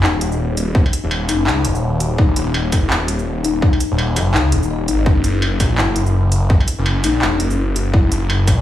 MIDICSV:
0, 0, Header, 1, 5, 480
1, 0, Start_track
1, 0, Tempo, 359281
1, 999, Time_signature, 4, 2, 24, 8
1, 11507, End_track
2, 0, Start_track
2, 0, Title_t, "Kalimba"
2, 0, Program_c, 0, 108
2, 41, Note_on_c, 0, 63, 99
2, 980, Note_off_c, 0, 63, 0
2, 1717, Note_on_c, 0, 63, 77
2, 1938, Note_off_c, 0, 63, 0
2, 2678, Note_on_c, 0, 66, 79
2, 2899, Note_off_c, 0, 66, 0
2, 2915, Note_on_c, 0, 63, 107
2, 3857, Note_off_c, 0, 63, 0
2, 4598, Note_on_c, 0, 63, 80
2, 4819, Note_off_c, 0, 63, 0
2, 4837, Note_on_c, 0, 63, 87
2, 5068, Note_off_c, 0, 63, 0
2, 5561, Note_on_c, 0, 66, 78
2, 5780, Note_off_c, 0, 66, 0
2, 5799, Note_on_c, 0, 63, 101
2, 6020, Note_off_c, 0, 63, 0
2, 6284, Note_on_c, 0, 75, 75
2, 6512, Note_off_c, 0, 75, 0
2, 6522, Note_on_c, 0, 63, 76
2, 6741, Note_off_c, 0, 63, 0
2, 6758, Note_on_c, 0, 63, 86
2, 6989, Note_off_c, 0, 63, 0
2, 7480, Note_on_c, 0, 66, 77
2, 7700, Note_off_c, 0, 66, 0
2, 7716, Note_on_c, 0, 64, 101
2, 8658, Note_off_c, 0, 64, 0
2, 9403, Note_on_c, 0, 63, 78
2, 9621, Note_off_c, 0, 63, 0
2, 9643, Note_on_c, 0, 63, 80
2, 9871, Note_off_c, 0, 63, 0
2, 10362, Note_on_c, 0, 66, 76
2, 10581, Note_off_c, 0, 66, 0
2, 10602, Note_on_c, 0, 64, 105
2, 11507, Note_off_c, 0, 64, 0
2, 11507, End_track
3, 0, Start_track
3, 0, Title_t, "Detuned saw bass"
3, 0, Program_c, 1, 39
3, 44, Note_on_c, 1, 27, 99
3, 1125, Note_off_c, 1, 27, 0
3, 1384, Note_on_c, 1, 27, 99
3, 1720, Note_on_c, 1, 30, 80
3, 1740, Note_off_c, 1, 27, 0
3, 1958, Note_on_c, 1, 37, 99
3, 1978, Note_off_c, 1, 30, 0
3, 2199, Note_on_c, 1, 27, 96
3, 2219, Note_off_c, 1, 37, 0
3, 2907, Note_off_c, 1, 27, 0
3, 2918, Note_on_c, 1, 27, 105
3, 3639, Note_on_c, 1, 30, 80
3, 3659, Note_off_c, 1, 27, 0
3, 3880, Note_on_c, 1, 27, 96
3, 3900, Note_off_c, 1, 30, 0
3, 4964, Note_off_c, 1, 27, 0
3, 5224, Note_on_c, 1, 27, 100
3, 5567, Note_on_c, 1, 30, 79
3, 5587, Note_off_c, 1, 27, 0
3, 5801, Note_on_c, 1, 37, 96
3, 5821, Note_off_c, 1, 30, 0
3, 6043, Note_on_c, 1, 27, 96
3, 6063, Note_off_c, 1, 37, 0
3, 6527, Note_on_c, 1, 32, 105
3, 6547, Note_off_c, 1, 27, 0
3, 6747, Note_off_c, 1, 32, 0
3, 6763, Note_on_c, 1, 30, 97
3, 7483, Note_on_c, 1, 34, 81
3, 7503, Note_off_c, 1, 30, 0
3, 7722, Note_on_c, 1, 30, 101
3, 7742, Note_off_c, 1, 34, 0
3, 8805, Note_off_c, 1, 30, 0
3, 9066, Note_on_c, 1, 30, 101
3, 9401, Note_on_c, 1, 34, 80
3, 9421, Note_off_c, 1, 30, 0
3, 9642, Note_on_c, 1, 28, 97
3, 9662, Note_off_c, 1, 34, 0
3, 9885, Note_on_c, 1, 30, 98
3, 9905, Note_off_c, 1, 28, 0
3, 10590, Note_off_c, 1, 30, 0
3, 10604, Note_on_c, 1, 30, 100
3, 11323, Note_on_c, 1, 34, 82
3, 11343, Note_off_c, 1, 30, 0
3, 11507, Note_off_c, 1, 34, 0
3, 11507, End_track
4, 0, Start_track
4, 0, Title_t, "Struck metal"
4, 1146, Note_on_c, 9, 77, 40
4, 1280, Note_off_c, 9, 77, 0
4, 1483, Note_on_c, 9, 77, 80
4, 1616, Note_off_c, 9, 77, 0
4, 1721, Note_on_c, 9, 77, 55
4, 1854, Note_off_c, 9, 77, 0
4, 3397, Note_on_c, 9, 77, 80
4, 3531, Note_off_c, 9, 77, 0
4, 3638, Note_on_c, 9, 77, 55
4, 3772, Note_off_c, 9, 77, 0
4, 4983, Note_on_c, 9, 77, 35
4, 5116, Note_off_c, 9, 77, 0
4, 5323, Note_on_c, 9, 77, 75
4, 5457, Note_off_c, 9, 77, 0
4, 5563, Note_on_c, 9, 77, 51
4, 5697, Note_off_c, 9, 77, 0
4, 7242, Note_on_c, 9, 77, 79
4, 7376, Note_off_c, 9, 77, 0
4, 7482, Note_on_c, 9, 77, 53
4, 7615, Note_off_c, 9, 77, 0
4, 8824, Note_on_c, 9, 77, 39
4, 8957, Note_off_c, 9, 77, 0
4, 9162, Note_on_c, 9, 77, 75
4, 9295, Note_off_c, 9, 77, 0
4, 9403, Note_on_c, 9, 77, 54
4, 9537, Note_off_c, 9, 77, 0
4, 11084, Note_on_c, 9, 77, 80
4, 11218, Note_off_c, 9, 77, 0
4, 11323, Note_on_c, 9, 77, 58
4, 11457, Note_off_c, 9, 77, 0
4, 11507, End_track
5, 0, Start_track
5, 0, Title_t, "Drums"
5, 44, Note_on_c, 9, 39, 116
5, 178, Note_off_c, 9, 39, 0
5, 283, Note_on_c, 9, 42, 84
5, 417, Note_off_c, 9, 42, 0
5, 427, Note_on_c, 9, 82, 37
5, 560, Note_off_c, 9, 82, 0
5, 765, Note_on_c, 9, 42, 69
5, 765, Note_on_c, 9, 82, 65
5, 899, Note_off_c, 9, 42, 0
5, 899, Note_off_c, 9, 82, 0
5, 1000, Note_on_c, 9, 36, 125
5, 1134, Note_off_c, 9, 36, 0
5, 1244, Note_on_c, 9, 42, 78
5, 1244, Note_on_c, 9, 82, 60
5, 1378, Note_off_c, 9, 42, 0
5, 1378, Note_off_c, 9, 82, 0
5, 1721, Note_on_c, 9, 42, 72
5, 1721, Note_on_c, 9, 82, 66
5, 1854, Note_off_c, 9, 42, 0
5, 1854, Note_off_c, 9, 82, 0
5, 1961, Note_on_c, 9, 39, 125
5, 2094, Note_off_c, 9, 39, 0
5, 2199, Note_on_c, 9, 42, 80
5, 2333, Note_off_c, 9, 42, 0
5, 2340, Note_on_c, 9, 82, 37
5, 2474, Note_off_c, 9, 82, 0
5, 2677, Note_on_c, 9, 42, 70
5, 2677, Note_on_c, 9, 82, 65
5, 2810, Note_off_c, 9, 42, 0
5, 2810, Note_off_c, 9, 82, 0
5, 2918, Note_on_c, 9, 36, 124
5, 3052, Note_off_c, 9, 36, 0
5, 3157, Note_on_c, 9, 42, 78
5, 3157, Note_on_c, 9, 82, 59
5, 3290, Note_off_c, 9, 42, 0
5, 3290, Note_off_c, 9, 82, 0
5, 3638, Note_on_c, 9, 42, 69
5, 3638, Note_on_c, 9, 82, 65
5, 3639, Note_on_c, 9, 36, 66
5, 3772, Note_off_c, 9, 36, 0
5, 3772, Note_off_c, 9, 42, 0
5, 3772, Note_off_c, 9, 82, 0
5, 3877, Note_on_c, 9, 39, 123
5, 4011, Note_off_c, 9, 39, 0
5, 4119, Note_on_c, 9, 42, 84
5, 4252, Note_off_c, 9, 42, 0
5, 4264, Note_on_c, 9, 82, 35
5, 4398, Note_off_c, 9, 82, 0
5, 4602, Note_on_c, 9, 42, 70
5, 4602, Note_on_c, 9, 82, 65
5, 4736, Note_off_c, 9, 42, 0
5, 4736, Note_off_c, 9, 82, 0
5, 4840, Note_on_c, 9, 36, 126
5, 4974, Note_off_c, 9, 36, 0
5, 5083, Note_on_c, 9, 42, 72
5, 5083, Note_on_c, 9, 82, 61
5, 5217, Note_off_c, 9, 42, 0
5, 5217, Note_off_c, 9, 82, 0
5, 5563, Note_on_c, 9, 42, 69
5, 5563, Note_on_c, 9, 82, 64
5, 5697, Note_off_c, 9, 42, 0
5, 5697, Note_off_c, 9, 82, 0
5, 5801, Note_on_c, 9, 39, 121
5, 5935, Note_off_c, 9, 39, 0
5, 6042, Note_on_c, 9, 42, 79
5, 6175, Note_off_c, 9, 42, 0
5, 6186, Note_on_c, 9, 82, 37
5, 6319, Note_off_c, 9, 82, 0
5, 6521, Note_on_c, 9, 42, 65
5, 6521, Note_on_c, 9, 82, 65
5, 6655, Note_off_c, 9, 42, 0
5, 6655, Note_off_c, 9, 82, 0
5, 6762, Note_on_c, 9, 36, 121
5, 6895, Note_off_c, 9, 36, 0
5, 7002, Note_on_c, 9, 42, 71
5, 7002, Note_on_c, 9, 82, 61
5, 7135, Note_off_c, 9, 42, 0
5, 7135, Note_off_c, 9, 82, 0
5, 7482, Note_on_c, 9, 36, 61
5, 7482, Note_on_c, 9, 42, 65
5, 7482, Note_on_c, 9, 82, 70
5, 7615, Note_off_c, 9, 36, 0
5, 7615, Note_off_c, 9, 42, 0
5, 7615, Note_off_c, 9, 82, 0
5, 7720, Note_on_c, 9, 39, 121
5, 7854, Note_off_c, 9, 39, 0
5, 7959, Note_on_c, 9, 42, 77
5, 8093, Note_off_c, 9, 42, 0
5, 8102, Note_on_c, 9, 82, 37
5, 8236, Note_off_c, 9, 82, 0
5, 8441, Note_on_c, 9, 42, 65
5, 8441, Note_on_c, 9, 82, 68
5, 8574, Note_off_c, 9, 42, 0
5, 8574, Note_off_c, 9, 82, 0
5, 8682, Note_on_c, 9, 36, 117
5, 8816, Note_off_c, 9, 36, 0
5, 8920, Note_on_c, 9, 42, 71
5, 8920, Note_on_c, 9, 82, 64
5, 9054, Note_off_c, 9, 42, 0
5, 9054, Note_off_c, 9, 82, 0
5, 9403, Note_on_c, 9, 42, 67
5, 9403, Note_on_c, 9, 82, 73
5, 9537, Note_off_c, 9, 42, 0
5, 9537, Note_off_c, 9, 82, 0
5, 9642, Note_on_c, 9, 39, 111
5, 9776, Note_off_c, 9, 39, 0
5, 9885, Note_on_c, 9, 42, 76
5, 10018, Note_off_c, 9, 42, 0
5, 10027, Note_on_c, 9, 82, 40
5, 10161, Note_off_c, 9, 82, 0
5, 10366, Note_on_c, 9, 42, 64
5, 10366, Note_on_c, 9, 82, 69
5, 10500, Note_off_c, 9, 42, 0
5, 10500, Note_off_c, 9, 82, 0
5, 10602, Note_on_c, 9, 36, 117
5, 10735, Note_off_c, 9, 36, 0
5, 10844, Note_on_c, 9, 42, 75
5, 10844, Note_on_c, 9, 82, 68
5, 10978, Note_off_c, 9, 42, 0
5, 10978, Note_off_c, 9, 82, 0
5, 11321, Note_on_c, 9, 36, 60
5, 11323, Note_on_c, 9, 42, 67
5, 11323, Note_on_c, 9, 82, 73
5, 11455, Note_off_c, 9, 36, 0
5, 11457, Note_off_c, 9, 42, 0
5, 11457, Note_off_c, 9, 82, 0
5, 11507, End_track
0, 0, End_of_file